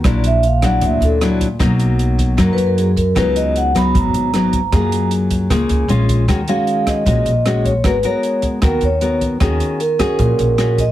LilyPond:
<<
  \new Staff \with { instrumentName = "Vibraphone" } { \time 4/4 \key ees \minor \tempo 4 = 154 r8 fes''8 f''8 ges''8 fes''8 a'8 r4 | r2 \tuplet 3/2 { ais'8 b'8 ais'8 } aes'8 ais'8 | ces''8 ees''8 ges''8 ces'''8 bes''2~ | bes''4 r2. |
r8 f''4 ees''8 ees''4. des''8 | ces''8 des''4 r8 bes'8 des''4 r8 | r4 bes'4 bes'4. ees''8 | }
  \new Staff \with { instrumentName = "Nylon-string guitar" } { \time 4/4 \key ees \minor << { <ges d' fes'>4 r8 <ges d' fes'>4. <ges d' fes'>8 r8 | <fis ais dis'>2 <fis ais dis'>4. r8 | <ges ces' ees'>4. <ges ces' ees'>4. <ges ces' ees'>8 r8 | <bes f' aes'>2 <bes f' aes'>4 <aes des' f'>4 |
<aes des' ges'>8 <aes des' ges'>4. <aes des' ges'>8 r8 <aes des' ges'>8 r8 | <ces' ges' bes'>8 <ces' ges' bes'>4. <ces' ges' bes'>8 r8 <ces' ges' bes'>4 | <des' ges' aes'>4 r8 <des' ges' aes'>4. <des' ges' aes'>8 r8 | } \\ { bes,2 bes,2 | b,2 fis,2 | des2 aes,2 | ges2 des4 r4 |
ees2 bes,2 | aes2 ees2 | ees2 bes,2 | } >> }
  \new Staff \with { instrumentName = "Upright bass" } { \clef bass \time 4/4 \key ees \minor bes,,2 d,8 d,4. | b,,2 fis,8 fis,4. | des,2 aes,,8 aes,,4. | ges,2 des,8 des,8 bes,,4 |
ees,8 r4. bes,,8 bes,,4. | aes,,8 r4. ees,8 ees,4. | ees,8 r4. bes,,8 bes,,4. | }
  \new DrumStaff \with { instrumentName = "Drums" } \drummode { \time 4/4 <hh bd ss>8 hh8 hh8 <hh bd ss>8 <hh bd>8 hh8 <hh ss>8 <hh bd>8 | <hh bd ss>8 hh8 hh8 <hh bd>8 <hh bd ss>8 hh8 hh8 <hh bd>8 | <hh bd ss>8 hh8 hh8 <hh bd ss>8 <hh bd>8 hh8 <hh ss>8 <hh bd>8 | <hh bd ss>8 hh8 hh8 <hh bd>8 <hh bd ss>8 hh8 hh8 <hh bd>8 |
<hh bd ss>8 hh8 hh8 <hh bd ss>8 <hh bd>8 hh8 <hh ss>8 <hh bd>8 | <hh bd ss>8 hh8 hh8 <hh bd>8 <hh bd ss>8 hh8 hh8 <hh bd>8 | <hh bd ss>8 hh8 hh8 <hh bd ss>8 <hh bd>8 hh8 <hh ss>8 <hh bd>8 | }
>>